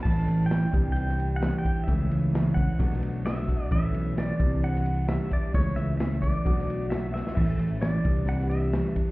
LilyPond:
<<
  \new Staff \with { instrumentName = "Pedal steel guitar" } { \time 4/4 \key a \mixolydian \tempo 4 = 131 a''4 g''4 g''4 fis''8 g''8 | e''4. fis''4 r8 e''4 | e''4 d''4 fis''4 e''8 d''8 | cis''8 e''8 e''8 d''4. e''8 e''8 |
e''4 d''4 fis''8 e''4 r8 | }
  \new Staff \with { instrumentName = "Steel-string acoustic guitar" } { \time 4/4 \key a \mixolydian <a, e a cis' e'>4 <e a cis' e'>8 <c e g d' e'>4. <e g d' e'>8 <g d' e'>8 | <cis e a cis' e'>4 <e a cis' e'>8 <a cis' e'>8 <b, fis a d' fis'>4 <fis a d' fis'>8 <a d' fis'>8 | <a, e a cis' e'>4 <e a cis' e'>8 <c e g d' e'>4. <e g d' e'>8 <g d' e'>8 | <cis e a cis' e'>4 <e a cis' e'>4 <b, fis a d' fis'>4 <fis a d' fis'>8 <a d' fis'>8 |
<a, e a cis' e'>4 <e a cis' e'>8 <g d' e'>8 <c e g d' e'>4 <e g d' e'>8 <g d' e'>8 | }
  \new Staff \with { instrumentName = "Picked electric bass" } { \clef bass \time 4/4 \key a \mixolydian a,,8 a,,4 c,2 r8 | cis,8 cis,4. b,,2 | a,,8 b,,4 c,2 r8 | cis,8 cis,4. b,,2 |
a,,8 a,,4 c,2 r8 | }
  \new DrumStaff \with { instrumentName = "Drums" } \drummode { \time 4/4 <cymc bd cymr>8 cymr8 <cymr sn>8 <bd cymr>8 cymr16 sn16 cymr8 <cymr sn>8 <bd cymr>8 | <bd cymr>8 cymr8 <cymr sn>8 <bd cymr>8 <bd cymr>16 sn16 cymr8 <cymr sn>8 <bd cymr>8 | <bd cymr>8 cymr8 <cymr sn>8 <bd cymr>8 cymr16 sn16 cymr8 <cymr sn>8 <bd cymr>8 | <bd cymr>8 cymr8 <cymr sn>8 <bd cymr>8 <bd cymr>16 sn16 cymr8 <cymr sn>8 sn16 sn16 |
<cymc bd>8 cymr8 <cymr sn>8 <bd cymr>8 cymr16 sn16 cymr8 <cymr sn>8 <bd cymr>8 | }
>>